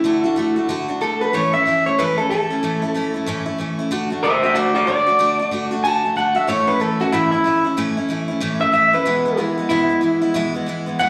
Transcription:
Already playing: E4
0.04 D3 A3 D4 F#4
0.24 A3 D4 F#4
0.36 D3 A3 D4 F#4
0.56 A3 D4 F#4
0.69 D3 A3 D4 F#4
0.88 A3 D4 F#4
1.01 D3 A3 D4 F#4 A4
1.21 A3 D4 F#4 B4
1.33 A2 E3 A3 C#4 E4 C#5
1.53 A3 C#4 E4 E5
1.65 E3 A3 C#4 E4
1.86 A3 C#4 E4 C#5
1.99 A2 E3 A3 C#4 E4 B4
2.18 A3 C#4 E4 A4
2.30 E3 A3 C#4 E4 A4
2.50 A3 C#4 E4
2.63 A2 E3 A3 C#4 E4
2.82 A3 C#4 E4
2.94 E3 A3 C#4 E4
3.14 A3 C#4 E4
3.26 A2 E3 A3 C#4 E4
3.46 A3 C#4 E4
3.58 E3 A3 C#4 E4
3.79 A3 C#4 E4
3.91 D3 A3 D4 F#4
4.10 A3 D4 F#4
4.23 D3 A3 D4 F#4 C5 E5
4.43 A3 D4 F#4 C5 E5
4.54 D3 A3 D4 F#4 D5
4.75 A3 D4 F#4 D5
4.87 D3 A3 D4 F#4 D5
5.06 A3 D4 F#4
5.19 D3 A3 D4 F#4
5.39 A3 D4 F#4
5.51 D3 A3 D4 F#4
5.71 A3 D4 F#4
5.84 D3 A3 D4 F#4 A5
6.04 A3 D4 F#4
6.16 D3 A3 D4 F#4 F#5
6.35 A3 D4 F#4 E5
6.47 A2 E3 A3 C#4 E4 C#5
6.67 A3 C#4 E4 B4
6.80 E3 A3 C#4 E4 A4
7.00 A3 C#4 E4 F#4
7.12 A2 E3 A3 C#4 E4
7.32 A3 C#4 E4
7.44 E3 A3 C#4 E4
7.64 A3 C#4 E4
7.77 A2 E3 A3 C#4 E4
7.97 A3 C#4 E4
8.09 E3 A3 C#4 E4
8.28 A3 C#4 E4
8.40 A2 E3 A3 C#4 E4
8.60 A3 C#4 E4 E5
8.72 E3 A3 C#4 E4 E5
8.93 A3 C#4 E4 B4
9.05 E2 B2 E3 G#3 B3 E4
9.25 E3 G#3 B3 E4
9.37 E3 G#3 B3 E4
9.58 E3 G#3 B3 E4
9.69 E2 B2 E3 G#3 B3 E4
9.89 E3 G#3 B3 E4
10.01 E3 G#3 B3 E4
10.22 E3 G#3 B3 E4
10.34 E2 B2 E3 G#3 B3 E4
10.54 E3 G#3 B3 E4
10.66 E3 G#3 B3 E4
10.86 E3 G#3 B3 E4
10.99 E2 B2 E3 G#3 B3 E4 F#5

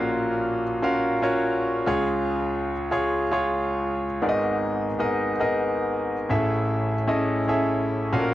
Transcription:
Already playing: A#1 A#2 C#4 F4 F#4 A#4 F5
0.82 C#4 F4 F#4 A#4 F5
1.22 C#4 F4 F#4 A#4 C#5
1.86 C#2 C#3 F4 G#4 C#5
2.91 F4 G#4 C#5
3.32 F4 G#4 C#5
4.21 G#1 G#2 B3 D#4 G#4 A#4 D5
4.29 D#5
4.99 B3 D#4 G#4 A#4 D#5
5.39 B3 D#4 G#4 A#4 D#5
6.29 A1 A2 C#4 E4 G#4 A4 E5
7.08 C#4 E4 G#4 A4 D#5
7.48 C#4 E4 G#4 A4 E5
8.12 A#1 A#2 C#4 F4 F#4 A4 F5
8.19 A#4

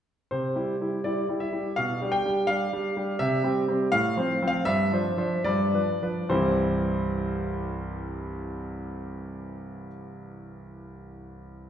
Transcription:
0.31 C3 C5
0.55 G3 E4 G4
0.81 G3 E4 G4
1.04 G3 E4 G4 D5
1.29 G3 E4 G4
1.40 E5
1.52 G3 E4 G4
1.76 B2 F5
2.01 G3 D4 G4
2.12 G5
2.25 G3 D4 G4
2.47 G3 D4 G4 F5
2.73 G3 D4 G4
2.96 G3 D4 G4
3.19 C3 E5
3.43 G3 C4 G4
3.68 G3 C4 G4
3.92 A2 F5
4.17 F3 C4 C5
4.42 F3 C4 C5
4.48 F5
4.65 G2 E5
4.92 F3 D4 C5
5.17 F3 D4 C5
5.44 G2 D5
5.74 F3 D4 B4
6.03 F3 D4 B4
6.29 C2 G2 E3 G3 C4 E4 C5

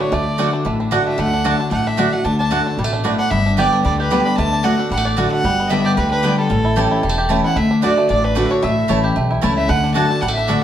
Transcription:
Already playing: D3 A3 D4 F#4
0.00 D4 C#5
0.12 D2 D3 A3 D5
0.38 D3 A3 D4 F#4 D5 F#5
0.53 D4
0.65 A1 A2 A3
0.80 D4
0.91 D3 A3 D4 F#4 D5 F#5
1.07 A3 E5
1.18 D2 D3 A3 F#5
1.33 D4
1.44 D3 A3 D4 F#4 D5 F#5 A5
1.60 D4
1.71 A1 A2 A3 F#5
1.87 D4 E5
1.97 D3 A3 D4 F#4 D5 F#5
2.12 A3 D4 F#4 F#5
2.24 D2 D3 D4 A5
2.39 D4 A5
2.50 D3 A3 D4 F#4 D5 F#5
2.67 D4
2.77 A1 B2 G3
2.84 A3
2.93 D4
3.04 A2 A3 F#4 D5 F#5
3.19 D4 F#5
3.31 G1 G2 B3 E5
3.46 D4
3.57 D3 G3 B3 G4 D5 G5
3.73 D4
3.84 D2 D3 G3 D5
4.00 G4 B4
4.10 D3 G3 B3 G4 D5 G5
4.25 D4 B5
4.37 D2 D3 A3 A5
4.53 D4
4.63 D3 A3 D4 F#4 D5 F#5
4.79 D4
4.91 A1 A2 G3 F#5
4.97 A3
5.05 D4 D5
5.17 D3 A3 D4 F#4 D5 F#5
5.31 A3 F#5
5.44 G1 G2 G3
5.60 B3
5.68 D3 G3 B3 D4 G4 D5 D#5 E5 G5
5.72 G4
5.85 G4 D5
5.96 D2 D3 G3 B4
6.11 D4 B4
6.23 D3 G3 B3 G4 D5 G5
6.38 G3 A4
6.50 A1 A2 C#4
6.65 E4
6.76 E3 A3 C#4 E4 G4 C#5 A5
6.91 E4
7.03 E1 E2 G3
7.09 A3
7.18 G4
7.29 E3 A3 C#4 E4 C#5 A5
7.44 E4 F#5
7.56 D2 D3 A3 E5
7.71 D4
7.82 D3 A3 D4 F#4 D5 F#5
7.97 A3
8.09 A1 A2 D4 D5
8.23 D4 B4
8.35 D3 A3 D4 F#4 D5 F#5
8.50 D4 C#5
8.62 A1 A2 A3 E5
8.88 A1 E3 A3 C#4 E4 C#5 A5
9.04 G4
9.16 B1 E2 A3
9.31 E4
9.41 C#2 E3 A3 C#4 E4 C#5 A5
9.56 A3 E5
9.68 D2 D3 A3 F#5
9.84 D4
9.94 D3 A3 D4 F#4 D5 F#5 A5
10.10 D4
10.20 A1 A2 G3 F#5
10.28 A3
10.35 D4 E5
10.48 D3 A3 D4 F#4 D5 F#5

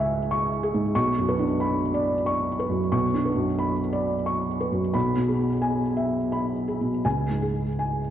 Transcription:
Already playing: C#2 G#2 G#4 E5 G#5 C#6
0.31 C#6
0.63 G#4
0.74 G#2
0.95 B1 C#6
1.19 F#2
1.29 B4
1.39 D4
1.60 B5
1.94 D5
2.26 C#6
2.59 B4
2.69 F#2
2.92 B1 C#6
3.14 D4
3.25 B4
3.36 F#2
3.59 B5
3.93 D5
4.26 C#6
4.61 B4
4.72 F#2
4.94 B1 B5
5.17 B2
5.28 G#4
5.62 G#5
5.97 E5
6.32 B5
6.68 G#4
6.81 B2
7.05 C#2 G#5
7.30 G#2
7.42 G#4
7.79 G#5

